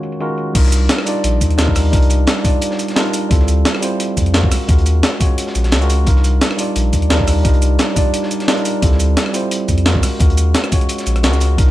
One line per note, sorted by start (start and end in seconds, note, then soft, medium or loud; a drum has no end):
0.00 0.20 D#3 medium
0.00 0.20 G#3 medium
0.00 0.21 C#4 medium
0.00 0.21 F4 medium
0.00 0.21 F#4 medium
0.00 0.22 A#4 medium
0.00 0.20 C#5 medium
0.00 closed hi-hat medium
0.00 shaker medium
0.12 closed hi-hat soft
0.20 0.53 D#3 medium
0.20 0.53 G#3 medium
0.20 0.53 C#4 medium
0.20 0.53 F4 medium
0.20 0.53 F#4 medium
0.20 0.54 A#4 loud
0.20 closed hi-hat medium
0.30 shaker soft
0.38 closed hi-hat medium
0.38 shaker medium
0.53 0.88 C2 loud
0.53 1.04 G3 medium
0.53 1.04 D4 medium
0.53 1.05 D#4 medium
0.53 1.05 F4 medium
0.53 1.06 A#4 medium
0.53 kick loud
0.53 closed hi-hat medium
0.53 crash loud
0.64 snare soft
0.72 closed hi-hat medium
0.72 shaker medium
0.89 snare loud
0.89 closed hi-hat medium
0.89 closed hi-hat loud
0.98 cross-stick medium
0.98 snare medium
1.05 1.56 G3 medium
1.05 1.56 D4 medium
1.05 1.57 D#4 medium
1.05 1.57 F4 medium
1.05 1.57 D5 medium
1.05 closed hi-hat medium
1.05 open hi-hat medium
1.05 shaker medium
1.24 1.40 A#1 medium
1.24 closed hi-hat medium
1.24 closed hi-hat loud
1.41 1.92 D#2 loud
1.41 kick medium
1.41 closed hi-hat medium
1.41 shaker medium
1.51 closed hi-hat soft
1.58 1.90 G3 medium
1.58 1.91 D4 medium
1.58 1.91 D#4 medium
1.58 1.91 F4 medium
1.58 1.91 A#4 loud
1.58 snare loud
1.58 closed hi-hat medium
1.58 closed hi-hat loud
1.68 kick loud
1.75 cross-stick medium
1.75 open hi-hat medium
1.75 shaker medium
1.91 2.26 C2 loud
1.91 2.42 G3 medium
1.91 2.42 D4 medium
1.91 2.43 D#4 medium
1.91 2.43 F4 medium
1.91 2.44 A#4 medium
1.91 kick loud
1.91 closed hi-hat medium
2.02 closed hi-hat soft
2.10 closed hi-hat medium
2.10 shaker medium
2.27 snare loud
2.27 closed hi-hat medium
2.37 snare soft
2.43 2.94 G3 medium
2.43 2.94 D4 medium
2.43 2.94 D#4 medium
2.43 2.95 F4 medium
2.43 2.95 D5 medium
2.43 kick loud
2.43 closed hi-hat medium
2.43 open hi-hat medium
2.43 shaker medium
2.62 closed hi-hat loud
2.71 snare medium
2.79 closed hi-hat medium
2.79 shaker medium
2.88 snare medium
2.88 closed hi-hat soft
2.96 3.28 G3 medium
2.96 3.29 D4 medium
2.96 3.29 D#4 medium
2.96 3.29 F4 medium
2.96 3.29 A#4 loud
2.96 snare loud
2.96 closed hi-hat medium
2.96 closed hi-hat loud
3.05 closed hi-hat soft
3.13 closed hi-hat medium
3.13 open hi-hat medium
3.13 shaker medium
3.29 3.64 D2 loud
3.29 3.80 G3 medium
3.29 3.80 C4 medium
3.29 3.81 E4 medium
3.29 3.81 F4 medium
3.29 3.81 A4 medium
3.29 kick loud
3.29 closed hi-hat medium
3.39 snare soft
3.48 closed hi-hat medium
3.48 shaker medium
3.65 snare loud
3.65 closed hi-hat medium
3.74 cross-stick medium
3.74 snare medium
3.81 4.31 G3 medium
3.81 4.32 C4 medium
3.81 4.32 E4 medium
3.81 4.33 F4 medium
3.81 4.33 C5 medium
3.81 closed hi-hat medium
3.81 open hi-hat medium
3.81 shaker medium
4.00 closed hi-hat loud
4.00 closed hi-hat medium
4.17 4.50 F2 medium
4.17 kick medium
4.17 closed hi-hat medium
4.17 shaker medium
4.26 closed hi-hat soft
4.33 4.66 G#3 loud
4.33 4.67 C#4 medium
4.33 4.67 F4 medium
4.33 4.67 F#4 medium
4.33 4.67 A#4 loud
4.33 snare loud
4.33 closed hi-hat medium
4.43 kick loud
4.52 cross-stick soft
4.52 open hi-hat medium
4.52 shaker medium
4.67 5.02 D#2 loud
4.67 5.18 G#3 medium
4.67 5.18 C#4 medium
4.67 5.19 F4 medium
4.67 5.19 F#4 medium
4.67 5.19 A#4 medium
4.67 kick loud
4.67 closed hi-hat loud
4.67 closed hi-hat medium
4.78 closed hi-hat soft
4.86 closed hi-hat medium
4.86 shaker medium
5.03 snare loud
5.03 closed hi-hat medium
5.12 snare soft
5.19 5.69 G#3 medium
5.19 5.70 C#4 medium
5.19 5.70 F4 medium
5.19 5.71 F#4 medium
5.19 5.71 C#5 medium
5.19 kick loud
5.19 closed hi-hat medium
5.19 open hi-hat medium
5.19 shaker medium
5.38 closed hi-hat medium
5.47 snare medium
5.55 5.74 A#1 medium
5.55 closed hi-hat medium
5.55 shaker medium
5.64 snare medium
5.64 closed hi-hat soft
5.72 6.05 C#2 medium
5.72 snare loud
5.72 closed hi-hat medium
5.80 6.04 G#3 medium
5.80 6.05 C#4 medium
5.80 6.05 F4 medium
5.80 6.05 F#4 medium
5.80 6.05 A#4 loud
5.80 closed hi-hat soft
5.80 shaker soft
5.90 closed hi-hat medium
5.90 open hi-hat medium
5.90 shaker medium
6.05 6.40 C2 loud
6.05 6.56 G3 medium
6.05 6.56 D4 medium
6.05 6.56 D#4 medium
6.05 6.57 F4 medium
6.05 6.57 A#4 medium
6.05 kick loud
6.05 closed hi-hat medium
6.16 snare soft
6.24 closed hi-hat medium
6.24 shaker medium
6.41 snare loud
6.41 closed hi-hat medium
6.50 cross-stick medium
6.50 snare medium
6.57 7.07 G3 medium
6.57 7.08 D4 medium
6.57 7.08 D#4 medium
6.57 7.09 F4 medium
6.57 7.09 D5 medium
6.57 closed hi-hat medium
6.57 open hi-hat medium
6.57 shaker medium
6.76 6.91 A#1 medium
6.76 closed hi-hat medium
6.93 7.43 D#2 loud
6.93 kick medium
6.93 closed hi-hat medium
6.93 shaker medium
7.02 closed hi-hat soft
7.09 7.42 G3 medium
7.09 7.43 D4 medium
7.09 7.43 D#4 medium
7.09 7.43 F4 medium
7.09 7.43 A#4 loud
7.09 snare loud
7.09 closed hi-hat medium
7.19 kick loud
7.27 cross-stick soft
7.27 open hi-hat medium
7.27 shaker medium
7.43 7.78 C2 loud
7.43 7.93 G3 medium
7.43 7.94 D4 medium
7.43 7.94 D#4 medium
7.43 7.95 F4 medium
7.43 7.95 A#4 medium
7.43 kick loud
7.43 closed hi-hat medium
7.53 closed hi-hat soft
7.62 closed hi-hat medium
7.62 shaker medium
7.79 snare loud
7.79 closed hi-hat medium
7.89 snare soft
7.95 8.45 G3 medium
7.95 8.46 D4 medium
7.95 8.46 D#4 medium
7.95 8.47 F4 medium
7.95 8.47 D5 medium
7.95 kick loud
7.95 closed hi-hat medium
7.95 open hi-hat medium
7.95 shaker medium
8.14 closed hi-hat loud
8.14 closed hi-hat medium
8.23 snare medium
8.31 closed hi-hat medium
8.31 shaker medium
8.40 snare medium
8.40 closed hi-hat soft
8.47 8.80 G3 medium
8.47 8.80 D4 medium
8.47 8.81 D#4 medium
8.47 8.81 F4 medium
8.47 8.81 A#4 loud
8.47 snare loud
8.47 closed hi-hat medium
8.57 closed hi-hat soft
8.65 closed hi-hat medium
8.65 open hi-hat medium
8.65 shaker medium
8.81 9.16 D2 loud
8.81 9.31 G3 medium
8.81 9.32 C4 medium
8.81 9.32 E4 medium
8.81 9.33 F4 medium
8.81 9.33 A4 medium
8.81 kick loud
8.81 closed hi-hat loud
8.92 snare soft
8.99 closed hi-hat medium
8.99 shaker medium
9.17 snare loud
9.17 closed hi-hat medium
9.26 cross-stick medium
9.26 snare medium
9.32 9.83 G3 medium
9.32 9.84 C4 medium
9.32 9.84 E4 medium
9.32 9.84 F4 medium
9.32 9.85 C5 medium
9.32 closed hi-hat medium
9.32 open hi-hat medium
9.32 shaker medium
9.51 closed hi-hat loud
9.51 closed hi-hat medium
9.68 10.02 F2 medium
9.68 kick medium
9.68 closed hi-hat medium
9.68 shaker medium
9.78 closed hi-hat soft
9.85 10.18 G#3 loud
9.85 10.18 C#4 medium
9.85 10.19 F4 medium
9.85 10.19 F#4 medium
9.85 10.19 A#4 loud
9.85 snare loud
9.85 closed hi-hat loud
9.85 closed hi-hat medium
9.95 kick medium
10.03 cross-stick soft
10.03 open hi-hat medium
10.03 shaker medium
10.19 10.54 D#2 loud
10.19 10.69 G#3 medium
10.19 10.70 C#4 medium
10.19 10.70 F4 medium
10.19 10.71 F#4 medium
10.19 10.71 A#4 medium
10.19 kick loud
10.19 closed hi-hat medium
10.30 closed hi-hat soft
10.37 closed hi-hat medium
10.37 shaker medium
10.54 snare loud
10.54 closed hi-hat medium
10.54 closed hi-hat loud
10.64 cross-stick medium
10.64 snare soft
10.64 shaker soft
10.70 11.21 G#3 medium
10.70 11.21 C#4 medium
10.70 11.22 F4 medium
10.70 11.22 F#4 medium
10.70 11.23 C#5 medium
10.70 kick loud
10.70 closed hi-hat medium
10.70 open hi-hat medium
10.70 shaker medium
10.81 closed hi-hat soft
10.89 closed hi-hat medium
10.89 closed hi-hat loud
10.98 snare soft
10.98 closed hi-hat soft
10.98 shaker soft
11.06 11.25 A#1 medium
11.06 closed hi-hat medium
11.06 shaker medium
11.16 cross-stick soft
11.16 closed hi-hat soft
11.23 11.57 C#2 medium
11.23 11.56 G#3 medium
11.23 11.56 C#4 medium
11.23 11.56 F4 medium
11.23 11.57 F#4 medium
11.23 11.57 A#4 loud
11.23 snare medium
11.23 snare loud
11.23 closed hi-hat medium
11.33 snare soft
11.33 shaker soft
11.40 closed hi-hat medium
11.40 open hi-hat medium
11.40 shaker medium
11.56 11.71 C2 loud
11.56 11.71 G3 medium
11.56 11.71 D4 medium
11.56 11.71 D#4 medium
11.56 11.71 F4 medium
11.56 11.71 A#4 medium
11.56 kick loud
11.56 closed hi-hat medium
11.68 snare soft